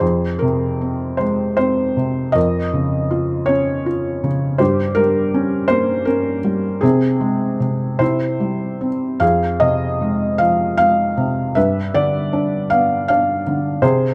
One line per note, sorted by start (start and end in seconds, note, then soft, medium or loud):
0.00 2.32 F2 soft
0.00 1.16 G#4 soft
0.00 0.42 C5 medium
0.39 1.93 C3 soft
0.39 1.21 A#4 medium
0.81 1.56 C4 soft
1.17 2.32 G#3 soft
1.17 1.55 C5 medium
1.57 2.33 C4 soft
1.57 2.31 C5 medium
1.97 2.34 C3 soft
2.32 4.56 F2 medium
2.32 3.44 A#4 medium
2.32 3.50 D#5 medium
2.73 4.18 C#3 soft
3.11 3.85 F4 soft
3.46 4.57 C#4 soft
3.46 4.27 C#5 medium
3.86 4.58 F4 soft
4.24 4.59 C#3 soft
4.58 6.78 G2 medium
4.58 5.66 G4 medium
4.58 4.98 C5 medium
4.95 6.40 G3 soft
4.95 5.65 A#4 medium
5.34 6.06 C#4 soft
5.68 6.79 A#3 soft
5.68 6.03 C5 medium
6.05 6.81 C#4 soft
6.05 6.84 A#4 medium
6.45 6.82 G3 soft
6.81 7.59 C3 medium
6.81 7.97 C4 medium
6.81 7.96 G#4 medium
7.21 7.98 G#3 soft
7.60 7.98 C3 soft
7.99 9.18 C3 soft
7.99 9.18 E4 medium
7.99 8.86 C5 medium
8.40 9.19 G3 soft
8.81 9.20 C4 soft
9.20 11.52 F2 medium
9.20 10.36 G#4 medium
9.20 9.62 F5 medium
9.60 11.13 C3 soft
9.60 10.41 D#5 medium
10.02 10.77 G#3 soft
10.38 11.53 F3 soft
10.38 10.76 F5 medium
10.77 11.54 G#3 soft
10.77 11.52 F5 medium
11.17 11.55 C3 soft
11.55 13.79 G2 medium
11.55 12.68 B4 medium
11.55 11.92 E5 medium
11.94 13.42 D3 soft
11.94 12.68 D5 medium
12.33 13.08 D4 soft
12.70 13.79 B3 soft
12.70 13.07 F5 medium
13.08 13.81 D4 soft
13.08 13.78 F5 medium
13.47 13.82 D3 soft
13.82 14.14 C3 medium
13.82 14.14 G#4 medium
13.82 14.14 C5 medium